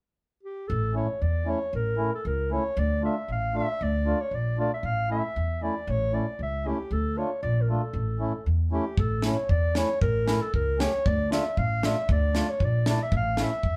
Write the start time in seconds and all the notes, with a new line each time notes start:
0.43 G4
0.68 A1 A4
0.94 A3 C#4 E4 C#5
1.21 E2 D5
1.46 A3 C#4 E4
1.50 C#5
1.73 A1 A#4
1.97 A3 C#4 E4
2.14 A4
2.25 C#2 A#4
2.51 A3 C#4 E4 C#5
2.77 D2 D5
3.02 A3 D4 F4 E5
3.28 A1 F5
3.54 A3 D4 F4 E5
3.81 D2 D5
4.05 A3 D4 F4
4.21 C#5
4.31 A#1 D5
4.58 A3 D4 F4 D5
4.74 E5
4.83 A1 F5
5.10 A3 C#4 E4 E5
5.36 E2
5.62 A3 C#4 E4 D5
5.87 A1 C#5
6.13 A3 C#4 E4 D5
6.39 C#2 E5
6.65 A3 C#4 E4 G4
6.91 D2 A4
7.17 A3 D4 F4 C#5
7.43 A#1 D5
7.62 A#4
7.69 A3 D4 F4 A4
7.93 A1
8.19 A3 C#4 E4
8.46 E2
8.71 A3 C#4 E4 G4
8.97 A1 A4, kick
9.22 A3 C#4 E4 C#5, snare
9.49 E2 D5, kick
9.75 A3 C#4 E4 C#5, snare
10.01 A1 A#4, kick
10.27 A3 C#4 E4, snare
10.42 A4
10.54 C#2 A#4, kick
10.78 A3 C#4 G4 C#5, snare
11.06 D2 D5, kick
11.30 A3 D4 F4 E5, snare
11.57 A1 F5, kick
11.83 A3 D4 F4 E5, snare
12.09 D2 D5, kick
12.34 A3 D4 F4, snare
12.50 C#5
12.60 A#1, kick
12.65 D5
12.86 A3 D4 E4 D5, snare
13.03 E5
13.12 A1, kick
13.16 F5
13.37 A3 C#4 E4, snare
13.43 E5
13.63 E2, kick